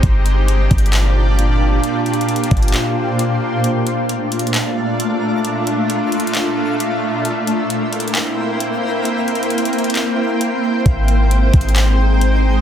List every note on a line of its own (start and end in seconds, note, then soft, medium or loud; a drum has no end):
0.03 0.68 G1 loud
0.03 7.21 A#2 medium
0.03 3.60 D4 medium
0.03 3.60 F4 medium
0.03 3.60 G4 medium
0.03 1.82 D5 medium
0.03 kick loud
0.03 closed hi-hat medium
0.26 closed hi-hat medium
0.48 closed hi-hat medium
0.71 1.80 G1 loud
0.71 kick loud
0.71 closed hi-hat medium
0.78 closed hi-hat medium
0.86 closed hi-hat medium
0.93 clap loud
0.93 closed hi-hat medium
1.39 closed hi-hat medium
1.84 3.62 C5 loud
1.84 closed hi-hat medium
2.06 closed hi-hat soft
2.14 closed hi-hat soft
2.21 closed hi-hat medium
2.29 closed hi-hat medium
2.36 closed hi-hat medium
2.44 closed hi-hat medium
2.51 2.74 G1 loud
2.51 kick loud
2.51 closed hi-hat soft
2.51 open hi-hat medium
2.57 closed hi-hat medium
2.63 closed hi-hat medium
2.68 closed hi-hat medium
2.74 clap loud
2.74 closed hi-hat medium
3.19 closed hi-hat medium
3.64 7.21 A3 medium
3.64 7.21 D4 medium
3.64 7.21 F4 medium
3.64 7.21 D5 medium
3.64 5.43 D5 loud
3.64 7.21 A#5 medium
3.64 closed hi-hat medium
3.87 closed hi-hat medium
4.09 closed hi-hat medium
4.32 closed hi-hat medium
4.39 closed hi-hat medium
4.47 closed hi-hat medium
4.54 clap loud
4.54 closed hi-hat medium
5.00 closed hi-hat medium
5.44 7.23 E5 medium
5.44 closed hi-hat medium
5.67 closed hi-hat medium
5.90 closed hi-hat medium
6.12 closed hi-hat medium
6.20 closed hi-hat medium
6.27 closed hi-hat medium
6.35 clap loud
6.35 closed hi-hat medium
6.80 closed hi-hat medium
7.25 10.82 A#3 medium
7.25 12.61 C4 medium
7.25 10.82 E4 medium
7.25 10.82 A#4 medium
7.25 12.61 C5 medium
7.25 10.82 E5 medium
7.25 12.61 G5 medium
7.25 12.61 C6 medium
7.25 closed hi-hat medium
7.47 closed hi-hat medium
7.70 closed hi-hat medium
7.93 closed hi-hat medium
8.00 closed hi-hat medium
8.08 closed hi-hat medium
8.15 clap loud
8.15 closed hi-hat medium
8.60 closed hi-hat medium
9.05 closed hi-hat medium
9.28 closed hi-hat soft
9.35 closed hi-hat soft
9.43 closed hi-hat medium
9.50 closed hi-hat medium
9.58 closed hi-hat medium
9.65 closed hi-hat medium
9.73 closed hi-hat soft
9.73 open hi-hat medium
9.79 closed hi-hat medium
9.84 closed hi-hat medium
9.90 closed hi-hat medium
9.95 clap loud
9.95 closed hi-hat medium
10.41 closed hi-hat medium
10.86 11.51 G#1 loud
10.86 12.61 G#3 medium
10.86 12.61 D#4 medium
10.86 12.61 G#4 medium
10.86 12.61 G5 medium
10.86 kick loud
10.86 closed hi-hat medium
11.08 closed hi-hat medium
11.31 closed hi-hat medium
11.54 12.61 G#1 loud
11.54 kick loud
11.54 closed hi-hat medium
11.61 closed hi-hat medium
11.69 closed hi-hat medium
11.76 clap loud
11.76 closed hi-hat medium
12.21 closed hi-hat medium